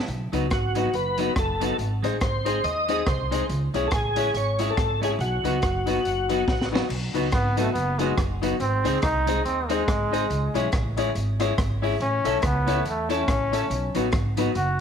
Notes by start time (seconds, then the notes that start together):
0.08 B1, closed hi-hat
0.32 C#2 F#3 B3 D#4 F#4 B4, closed hi-hat
0.50 G#1 F#4, kick, cross-stick, closed hi-hat
0.75 F#3 B3 D#4 F#4 B4, closed hi-hat
0.94 F#1 B4, closed hi-hat
1.18 F#3 B3 D#4 F#4 B4, closed hi-hat
1.35 F#1 A4, muted clean electric guitar stroke, kick, cross-stick, closed hi-hat
1.60 F#3 B3 D#4 F#4 B4, closed hi-hat
1.78 G#1, closed hi-hat
2.02 A1 G#3 C4 D#4 G#4 C5, closed hi-hat
2.21 G#1 C5, kick, cross-stick, closed hi-hat
2.45 G#3 C4 D#4 G#4 C5, closed hi-hat
2.64 D#2 D#5, closed hi-hat
2.88 G#3 C4 D#4 G#4 C5, closed hi-hat
3.07 C2 C5, muted clean electric guitar stroke, kick, cross-stick, closed hi-hat
3.31 G#3 C4 D#4 G#4 C5, closed hi-hat
3.49 C#2, closed hi-hat
3.74 B1 G#3 C#4 E4 G#4 C#5, closed hi-hat
3.88 A4, closed hi-hat
3.92 A1 G#4, kick, cross-stick
4.16 G#3 C#4 E4 G#4 C#5, closed hi-hat
4.34 G#1 C#5, closed hi-hat
4.59 G#3 C#4 E4 G#4 C#5, closed hi-hat
4.70 A4
4.77 G#1, muted clean electric guitar stroke, kick, cross-stick, closed hi-hat
5.01 G#3 C#4 E4 G#4 C#5, closed hi-hat
5.19 B1 F#4, closed hi-hat
5.44 C#2 F#3 B3 D#4 F#4 B4, closed hi-hat
5.62 F#1, kick, cross-stick, closed hi-hat
5.86 F#3 B3 D#4 F#4 B4, closed hi-hat
6.05 F#1, closed hi-hat
6.29 F#3 B3 D#4 F#4 B4, closed hi-hat
6.48 A1, muted clean electric guitar stroke, kick, snare
6.61 snare
6.71 F#3 B3 D#4 F#4 B4
6.75 snare
6.89 B1, crash
7.14 C#2 F#3 B3 D#4 F#4 B4, closed hi-hat
7.32 G#1 B3, kick, cross-stick, closed hi-hat
7.56 F#3 A3 B3 D#4 F#4 B4, closed hi-hat
7.73 F#1 B3, closed hi-hat
7.99 F#3 G#3 B3 D#4 F#4 B4, closed hi-hat
8.17 F#1, muted clean electric guitar stroke, kick, cross-stick, closed hi-hat
8.42 F#3 B3 D#4 F#4 B4, closed hi-hat
8.60 G#1 C4, closed hi-hat
8.84 C#2 G#3 C4 D#4 G#4 C5, closed hi-hat
9.02 C2 D#4, kick, cross-stick, closed hi-hat
9.27 G#3 C4 D#4 G#4 C5, closed hi-hat
9.45 D#2 C4, closed hi-hat
9.69 G#3 C4 D#4 G#4 C5, closed hi-hat
9.87 G#1, muted clean electric guitar stroke, kick, cross-stick, closed hi-hat
10.11 G#3 C4 D#4 G#4 C5, closed hi-hat
10.30 C#2, closed hi-hat
10.54 B1 G#3 C#4 E4 G#4 C#5, closed hi-hat
10.72 A1, kick, cross-stick, closed hi-hat
10.97 G#3 C#4 E4 G#4 C#5, closed hi-hat
11.15 G#1, closed hi-hat
11.40 G#3 C#4 E4 G#4 C#5, cross-stick, closed hi-hat
11.58 G#1, muted clean electric guitar stroke, kick, cross-stick, closed hi-hat
11.82 G#3 C#4 E4 G#4 C#5, open hi-hat
12.00 A1 C#4, closed hi-hat
12.24 B1 A3 C#4 E4 A4 C#5, closed hi-hat
12.42 C#2 B3, kick, cross-stick, closed hi-hat
12.67 A3 C#4 E4 A4 C#5, closed hi-hat
12.85 E2 A3, closed hi-hat
13.09 A3 C#4 E4 A4 C#5, closed hi-hat
13.27 A1, muted clean electric guitar stroke, kick, cross-stick, closed hi-hat
13.52 A3 C#4 E4 A4 C#5, closed hi-hat
13.70 B1, closed hi-hat
13.95 A1 F#3 B3 D#4 F#4 B4, closed hi-hat
14.12 G#1, kick, cross-stick, closed hi-hat
14.37 F#3 B3 D#4 F#4 B4, closed hi-hat
14.55 F#1 F#4, closed hi-hat